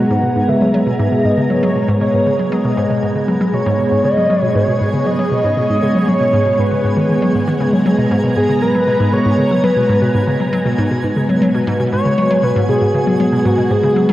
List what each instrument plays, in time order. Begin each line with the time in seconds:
Already playing: string machine G#3 B3 A#5, analog synth lead F#5, synth texture G#5
0.10 synth arpeggio sound G#2
0.23 synth arpeggio sound B2
0.36 synth arpeggio sound G#2
0.49 synth arpeggio sound C#3, analog synth lead E5
0.61 synth arpeggio sound F#3
0.74 synth arpeggio sound F#3
0.87 synth arpeggio sound B2
0.99 synth arpeggio sound G#2
1.12 synth arpeggio sound B2
1.25 synth arpeggio sound G#2, analog synth lead D#5
1.37 synth arpeggio sound C#3
1.50 synth arpeggio sound F#3, analog synth lead C#5
1.63 synth arpeggio sound F#3
1.76 synth arpeggio sound B2
1.88 synth arpeggio sound G#2
2.01 synth arpeggio sound B2, analog synth lead C#5
2.14 synth arpeggio sound G#2
2.26 synth arpeggio sound C#3
2.39 synth arpeggio sound F#3
2.52 synth arpeggio sound F#3, analog synth lead D#5
2.65 synth arpeggio sound B2
2.77 synth arpeggio sound G#2
2.90 synth arpeggio sound B2
3.03 synth arpeggio sound G#2
3.16 synth arpeggio sound C#3
3.28 synth arpeggio sound F#3
3.41 synth arpeggio sound F#3
3.54 synth arpeggio sound B2, analog synth lead C#5, string machine C#5
3.66 synth arpeggio sound G#2
3.79 synth arpeggio sound B2
3.92 synth arpeggio sound G#2
4.04 synth arpeggio sound C#3, analog synth lead D#5
4.17 synth arpeggio sound F#3
4.30 synth arpeggio sound F#3
4.43 synth arpeggio sound B2
4.55 synth arpeggio sound G#2, analog synth lead C#5
4.68 synth arpeggio sound B2
4.81 synth arpeggio sound G#2
4.94 synth arpeggio sound C#3
5.06 synth arpeggio sound F#3, analog synth lead D#5
5.19 synth arpeggio sound F#3
5.32 synth arpeggio sound B2
5.44 synth arpeggio sound G#2
5.57 synth arpeggio sound B2, analog synth lead D#5
5.70 synth arpeggio sound G#2
5.82 synth arpeggio sound C#3
5.95 synth arpeggio sound F#3
6.08 synth arpeggio sound F#3, analog synth lead C#5
6.21 synth arpeggio sound B2
6.33 synth arpeggio sound G#2
6.46 synth arpeggio sound B2
6.59 synth arpeggio sound G#2, analog synth lead B4
6.71 synth arpeggio sound C#3
6.84 synth arpeggio sound G#2
6.97 synth arpeggio sound D#3
7.09 synth arpeggio sound D#3
7.22 synth arpeggio sound F#3
7.35 synth arpeggio sound G#2
7.47 synth arpeggio sound D#3
7.60 synth arpeggio sound C#3, string machine A#5
7.73 synth arpeggio sound F#3
7.86 synth arpeggio sound F#3
7.98 synth arpeggio sound B2
8.11 synth arpeggio sound G#2
8.24 synth arpeggio sound B2
8.37 synth arpeggio sound G#2, analog synth lead G#4
8.49 synth arpeggio sound C#3
8.62 synth arpeggio sound F#3, analog synth lead B4
8.75 synth arpeggio sound F#3
8.87 synth arpeggio sound B2
9.00 synth arpeggio sound G#2
9.13 synth arpeggio sound B2, analog synth lead C#5
9.26 synth arpeggio sound G#2
9.38 synth arpeggio sound C#3
9.51 synth arpeggio sound F#3
9.64 synth arpeggio sound F#3, analog synth lead B4
9.77 synth arpeggio sound B2
9.89 synth arpeggio sound G#2
10.02 synth arpeggio sound B2
10.15 synth arpeggio sound G#2
10.27 synth arpeggio sound C#3
10.40 synth arpeggio sound F#3
10.53 synth arpeggio sound F#3
10.66 synth arpeggio sound B2
10.78 synth arpeggio sound G#2
10.91 synth arpeggio sound B2
11.04 synth arpeggio sound G#2
11.16 synth arpeggio sound C#3
11.29 synth arpeggio sound F#3
11.42 synth arpeggio sound F#3
11.55 synth arpeggio sound B2
11.67 synth arpeggio sound G#2, string machine F#4
11.80 synth arpeggio sound B2
11.93 synth arpeggio sound G#2, analog synth lead C#5
12.05 synth arpeggio sound C#3
12.18 synth arpeggio sound F#3
12.31 synth arpeggio sound F#3
12.43 synth arpeggio sound B2, analog synth lead B4
12.56 synth arpeggio sound G#2
12.69 synth arpeggio sound B2, analog synth lead G#4
12.82 synth arpeggio sound G#2
12.94 synth arpeggio sound C#3
13.07 synth arpeggio sound F#3
13.20 synth arpeggio sound F#3
13.32 synth arpeggio sound B2
13.45 synth arpeggio sound G#2, analog synth lead F#4
13.58 synth arpeggio sound B2
13.71 synth arpeggio sound G#2, analog synth lead G#4
13.83 synth arpeggio sound C#3
13.96 synth arpeggio sound F#3
14.09 synth arpeggio sound F#3